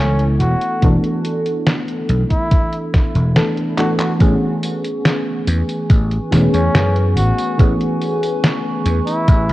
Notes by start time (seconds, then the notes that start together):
Already playing: C#2 E3 A3 B3 C#4 E4 A4
0.19 closed hi-hat
0.40 E1 F#4, closed hi-hat
0.61 closed hi-hat
0.81 E1 E3 A3 B3 D4 A4, kick, closed hi-hat
1.04 closed hi-hat
1.25 closed hi-hat
1.46 closed hi-hat
1.67 snare, closed hi-hat
1.88 closed hi-hat
2.09 B1, closed hi-hat
2.31 E4, kick, closed hi-hat
2.51 kick, closed hi-hat
2.73 closed hi-hat
2.94 kick, snare, closed hi-hat
3.15 E1, closed hi-hat
3.36 E3 A3 B3 D4 A4, snare, closed hi-hat
3.58 closed hi-hat
3.78 E3 A3 B3 D4 F#4 A4, clap, closed hi-hat
4.00 F#4, clap, closed hi-hat
4.19 A1 E3 A3 B3 C#4 G#4 B4 G#5 C#6, kick, closed hi-hat, tambourine
4.63 closed hi-hat, tambourine
4.84 closed hi-hat, tambourine
5.05 snare, closed hi-hat, tambourine
5.47 E2, closed hi-hat, tambourine
5.69 closed hi-hat, tambourine
5.90 A1, kick, closed hi-hat, tambourine
6.11 closed hi-hat
6.31 E1 E3 A3 B3 C#4 G#4, snare, closed hi-hat, tambourine
6.53 E2 C#4, closed hi-hat, tambourine
6.74 F#2, snare, closed hi-hat, tambourine
6.96 closed hi-hat
7.16 A1 F#4, closed hi-hat, tambourine
7.38 closed hi-hat, tambourine
7.57 A1 E3 A3 B3 C#4 G#4, kick, closed hi-hat, tambourine
7.80 closed hi-hat
8.01 closed hi-hat, tambourine
8.23 closed hi-hat, tambourine
8.43 snare, closed hi-hat, tambourine
8.85 E2, closed hi-hat, tambourine
9.06 E4, closed hi-hat, tambourine
9.28 A1, kick, closed hi-hat, tambourine
9.49 C#2, closed hi-hat